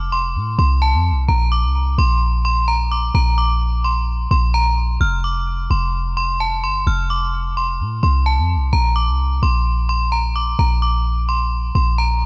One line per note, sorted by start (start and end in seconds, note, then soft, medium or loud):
0.00 0.37 F1 loud
0.13 0.56 C6 medium
0.36 0.58 A2 loud
0.59 0.96 C2 loud
0.59 0.78 C6 medium
0.82 1.01 A5 medium
0.94 1.13 F2 loud
1.11 1.28 C2 loud
1.29 1.66 A#1 loud
1.29 1.48 A#5 loud
1.52 1.95 D6 medium
1.64 1.97 C2 loud
1.98 3.11 A#1 loud
1.98 2.42 C6 medium
2.45 2.64 C6 medium
2.68 2.87 A#5 medium
2.91 3.10 D6 medium
3.15 4.27 A#1 loud
3.15 3.34 A#5 medium
3.38 3.82 D6 medium
3.84 4.28 C6 medium
4.31 4.98 A#1 loud
4.31 4.50 C6 medium
4.54 4.73 A#5 loud
5.01 5.68 F1 loud
5.01 5.20 F6 medium
5.24 5.68 D6 medium
5.70 6.65 F1 loud
5.70 6.14 C6 medium
6.17 6.36 C6 medium
6.40 6.59 A5 medium
6.63 6.86 G1 loud
6.63 6.83 C6 medium
6.87 7.81 F1 loud
6.87 7.06 F6 medium
7.10 7.54 D6 medium
7.57 8.00 C6 medium
7.80 8.02 A2 loud
8.03 8.40 C2 loud
8.03 8.22 C6 medium
8.26 8.45 A5 medium
8.39 8.57 F2 loud
8.56 8.72 C2 loud
8.73 9.10 A#1 loud
8.73 8.92 A#5 medium
8.96 9.40 D6 medium
9.08 9.41 C2 loud
9.43 10.55 A#1 loud
9.43 9.86 C6 medium
9.89 10.08 C6 medium
10.12 10.31 A#5 medium
10.36 10.55 D6 medium
10.59 11.71 A#1 loud
10.59 10.78 A#5 medium
10.82 11.26 D6 medium
11.29 11.72 C6 medium
11.75 12.26 A#1 loud
11.75 11.94 C6 medium
11.98 12.17 A#5 medium